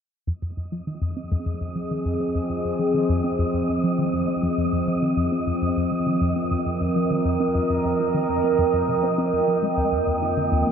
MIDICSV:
0, 0, Header, 1, 4, 480
1, 0, Start_track
1, 0, Key_signature, -4, "minor"
1, 0, Tempo, 594059
1, 221, Time_signature, 4, 2, 24, 8
1, 8661, End_track
2, 0, Start_track
2, 0, Title_t, "Synth texture"
2, 0, Program_c, 0, 99
2, 222, Note_on_c, 0, 75, 78
2, 8661, Note_off_c, 0, 75, 0
2, 8661, End_track
3, 0, Start_track
3, 0, Title_t, "Analog synth pad"
3, 0, Program_c, 1, 89
3, 222, Note_on_c, 1, 53, 75
3, 327, Note_on_c, 1, 60, 74
3, 331, Note_on_c, 1, 79, 74
3, 467, Note_on_c, 1, 68, 78
3, 4712, Note_on_c, 1, 70, 79
3, 4856, Note_off_c, 1, 68, 0
3, 7902, Note_off_c, 1, 53, 0
3, 7902, Note_on_c, 1, 41, 83
3, 7937, Note_on_c, 1, 58, 78
3, 7986, Note_on_c, 1, 65, 83
3, 8041, Note_on_c, 1, 51, 81
3, 8634, Note_off_c, 1, 60, 0
3, 8661, Note_off_c, 1, 41, 0
3, 8661, Note_off_c, 1, 51, 0
3, 8661, Note_off_c, 1, 58, 0
3, 8661, Note_off_c, 1, 65, 0
3, 8661, Note_off_c, 1, 70, 0
3, 8661, Note_off_c, 1, 79, 0
3, 8661, End_track
4, 0, Start_track
4, 0, Title_t, "Synth arpeggio sound"
4, 0, Program_c, 2, 84
4, 221, Note_on_c, 2, 41, 92
4, 260, Note_off_c, 2, 41, 0
4, 342, Note_on_c, 2, 41, 69
4, 407, Note_off_c, 2, 41, 0
4, 463, Note_on_c, 2, 41, 67
4, 527, Note_off_c, 2, 41, 0
4, 582, Note_on_c, 2, 53, 69
4, 647, Note_off_c, 2, 53, 0
4, 704, Note_on_c, 2, 51, 72
4, 801, Note_off_c, 2, 51, 0
4, 821, Note_on_c, 2, 41, 89
4, 919, Note_off_c, 2, 41, 0
4, 942, Note_on_c, 2, 60, 70
4, 1007, Note_off_c, 2, 60, 0
4, 1064, Note_on_c, 2, 41, 99
4, 1102, Note_off_c, 2, 41, 0
4, 1181, Note_on_c, 2, 41, 77
4, 1247, Note_off_c, 2, 41, 0
4, 1302, Note_on_c, 2, 41, 67
4, 1367, Note_off_c, 2, 41, 0
4, 1419, Note_on_c, 2, 53, 68
4, 1485, Note_off_c, 2, 53, 0
4, 1543, Note_on_c, 2, 51, 68
4, 1640, Note_off_c, 2, 51, 0
4, 1661, Note_on_c, 2, 41, 91
4, 1759, Note_off_c, 2, 41, 0
4, 1780, Note_on_c, 2, 60, 70
4, 1846, Note_off_c, 2, 60, 0
4, 1901, Note_on_c, 2, 41, 91
4, 1940, Note_off_c, 2, 41, 0
4, 2018, Note_on_c, 2, 41, 69
4, 2085, Note_off_c, 2, 41, 0
4, 2137, Note_on_c, 2, 41, 71
4, 2205, Note_off_c, 2, 41, 0
4, 2257, Note_on_c, 2, 53, 69
4, 2325, Note_off_c, 2, 53, 0
4, 2378, Note_on_c, 2, 51, 67
4, 2478, Note_off_c, 2, 51, 0
4, 2499, Note_on_c, 2, 41, 94
4, 2599, Note_off_c, 2, 41, 0
4, 2618, Note_on_c, 2, 60, 74
4, 2685, Note_off_c, 2, 60, 0
4, 2739, Note_on_c, 2, 41, 91
4, 2779, Note_off_c, 2, 41, 0
4, 2859, Note_on_c, 2, 41, 70
4, 2926, Note_off_c, 2, 41, 0
4, 2982, Note_on_c, 2, 41, 71
4, 3047, Note_off_c, 2, 41, 0
4, 3101, Note_on_c, 2, 53, 75
4, 3167, Note_off_c, 2, 53, 0
4, 3221, Note_on_c, 2, 51, 66
4, 3320, Note_off_c, 2, 51, 0
4, 3339, Note_on_c, 2, 41, 97
4, 3439, Note_off_c, 2, 41, 0
4, 3460, Note_on_c, 2, 60, 70
4, 3526, Note_off_c, 2, 60, 0
4, 3576, Note_on_c, 2, 41, 97
4, 3618, Note_off_c, 2, 41, 0
4, 3700, Note_on_c, 2, 41, 72
4, 3766, Note_off_c, 2, 41, 0
4, 3820, Note_on_c, 2, 41, 69
4, 3886, Note_off_c, 2, 41, 0
4, 3939, Note_on_c, 2, 53, 71
4, 4006, Note_off_c, 2, 53, 0
4, 4058, Note_on_c, 2, 51, 72
4, 4158, Note_off_c, 2, 51, 0
4, 4178, Note_on_c, 2, 41, 91
4, 4278, Note_off_c, 2, 41, 0
4, 4301, Note_on_c, 2, 60, 67
4, 4366, Note_off_c, 2, 60, 0
4, 4419, Note_on_c, 2, 41, 95
4, 4459, Note_off_c, 2, 41, 0
4, 4541, Note_on_c, 2, 41, 79
4, 4607, Note_off_c, 2, 41, 0
4, 4662, Note_on_c, 2, 41, 69
4, 4727, Note_off_c, 2, 41, 0
4, 4782, Note_on_c, 2, 53, 72
4, 4847, Note_off_c, 2, 53, 0
4, 4901, Note_on_c, 2, 51, 74
4, 5000, Note_off_c, 2, 51, 0
4, 5021, Note_on_c, 2, 41, 95
4, 5119, Note_off_c, 2, 41, 0
4, 5140, Note_on_c, 2, 60, 69
4, 5206, Note_off_c, 2, 60, 0
4, 5261, Note_on_c, 2, 41, 92
4, 5300, Note_off_c, 2, 41, 0
4, 5383, Note_on_c, 2, 41, 67
4, 5447, Note_off_c, 2, 41, 0
4, 5502, Note_on_c, 2, 41, 77
4, 5567, Note_off_c, 2, 41, 0
4, 5621, Note_on_c, 2, 53, 72
4, 5686, Note_off_c, 2, 53, 0
4, 5741, Note_on_c, 2, 51, 68
4, 5840, Note_off_c, 2, 51, 0
4, 5859, Note_on_c, 2, 41, 91
4, 5959, Note_off_c, 2, 41, 0
4, 5981, Note_on_c, 2, 60, 73
4, 6047, Note_off_c, 2, 60, 0
4, 6101, Note_on_c, 2, 41, 86
4, 6140, Note_off_c, 2, 41, 0
4, 6222, Note_on_c, 2, 41, 70
4, 6287, Note_off_c, 2, 41, 0
4, 6343, Note_on_c, 2, 41, 67
4, 6407, Note_off_c, 2, 41, 0
4, 6461, Note_on_c, 2, 53, 73
4, 6527, Note_off_c, 2, 53, 0
4, 6580, Note_on_c, 2, 51, 70
4, 6679, Note_off_c, 2, 51, 0
4, 6700, Note_on_c, 2, 41, 92
4, 6799, Note_off_c, 2, 41, 0
4, 6820, Note_on_c, 2, 60, 73
4, 6886, Note_off_c, 2, 60, 0
4, 6938, Note_on_c, 2, 41, 95
4, 6979, Note_off_c, 2, 41, 0
4, 7059, Note_on_c, 2, 41, 68
4, 7126, Note_off_c, 2, 41, 0
4, 7179, Note_on_c, 2, 48, 70
4, 7245, Note_off_c, 2, 48, 0
4, 7298, Note_on_c, 2, 60, 94
4, 7398, Note_off_c, 2, 60, 0
4, 7419, Note_on_c, 2, 60, 76
4, 7518, Note_off_c, 2, 60, 0
4, 7541, Note_on_c, 2, 41, 71
4, 7607, Note_off_c, 2, 41, 0
4, 7658, Note_on_c, 2, 53, 67
4, 7725, Note_off_c, 2, 53, 0
4, 7779, Note_on_c, 2, 56, 70
4, 7819, Note_off_c, 2, 56, 0
4, 7897, Note_on_c, 2, 39, 90
4, 7939, Note_off_c, 2, 39, 0
4, 8017, Note_on_c, 2, 39, 67
4, 8085, Note_off_c, 2, 39, 0
4, 8138, Note_on_c, 2, 39, 68
4, 8205, Note_off_c, 2, 39, 0
4, 8259, Note_on_c, 2, 51, 68
4, 8326, Note_off_c, 2, 51, 0
4, 8380, Note_on_c, 2, 50, 77
4, 8479, Note_off_c, 2, 50, 0
4, 8499, Note_on_c, 2, 39, 95
4, 8599, Note_off_c, 2, 39, 0
4, 8620, Note_on_c, 2, 58, 70
4, 8661, Note_off_c, 2, 58, 0
4, 8661, End_track
0, 0, End_of_file